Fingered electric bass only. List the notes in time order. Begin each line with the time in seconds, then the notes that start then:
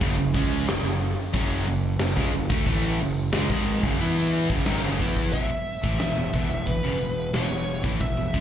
0.01 F#1
0.17 F#1
0.35 C#2
0.67 F#1
0.83 F#1
1.34 F#1
1.66 F#1
2.00 F#1
2.17 C#2
2.33 F#1
2.50 D2
2.66 A1
3.01 F#1
3.33 C#2
3.50 G#1
3.83 F#1
4.00 E2
4.49 F#1
4.67 G#1
4.84 F#1
5.00 E2
5.33 E1
5.51 muted fingered electric bass stroke
5.84 A1
6.01 E1
6.17 E1
6.33 E1
6.51 E1
6.67 E1
6.84 F#1
7.01 E1
7.33 E1
7.50 E1
7.84 A1
8.01 E1
8.16 E1
8.34 C#2